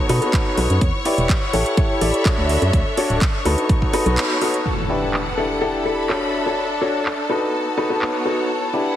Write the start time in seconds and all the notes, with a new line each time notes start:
Already playing: B3 A4 C#5 C#6
0.02 F#4
0.09 B2 D#4 F#4 A4 B4, open hi-hat
0.22 D#4 F#4 A4 B4, closed hi-hat
0.33 kick, clap, closed hi-hat
0.57 B1 D#4 F#4 A4 B4, open hi-hat
0.70 F#2, closed hi-hat
0.81 E2 E4, kick, closed hi-hat
1.00 B4
1.05 E4 G4 B4 D5, open hi-hat
1.14 E1 F#5, closed hi-hat
1.29 kick, clap, closed hi-hat
1.53 A1 E4 G4 A4 C#5, open hi-hat
1.66 closed hi-hat
1.77 E4 G4 A4 C#5, kick, closed hi-hat
1.86 E5
1.94 B5
2.01 A1 E4 G4 A4 D5, open hi-hat
2.14 closed hi-hat
2.25 D4 F#4 A4 C#5, kick, clap, closed hi-hat
2.38 D2
2.49 D4, open hi-hat
2.62 F#2 D4 F#4 A4 C#5, closed hi-hat
2.73 D2, kick, closed hi-hat
2.97 D4 F#4 A4 C#5, open hi-hat
3.10 D1, closed hi-hat
3.21 kick, clap, closed hi-hat
3.45 D2 D#4 F#4 A4 B4, open hi-hat
3.58 closed hi-hat
3.69 B3, kick, closed hi-hat
3.82 kick
3.89 C#5
3.93 D#4 F#4 A4 B4, open hi-hat
4.06 B1 D#4 F#4 A4 B4, closed hi-hat
4.17 clap, closed hi-hat
4.41 D#4 F#4 A4 B4, open hi-hat
4.54 closed hi-hat
4.65 E4 A4 A5, impact
4.88 D4 E4 G4 B4
4.92 F#5
5.14 clap
5.37 D4 E4 G4 A4
5.61 D4 E4 G4 A4
5.68 E5
5.81 B5
5.85 D4 E4 G4 A4
6.09 D4 F#4 A4 C#5, clap
6.33 D4
6.46 D4 F#4 A4 C#5
6.81 D4 F#4 A4 C#5
7.06 clap
7.29 D#4 F#4 A4 B4
7.53 B3
7.68 C#5
7.77 D#4 F#4 A4 B4
7.90 D#4 F#4 A4 B4
8.02 clap
8.25 D#4 F#4 A4 B4
8.49 E4
8.57 B4
8.73 D4 E4 G4 B4
8.82 F#5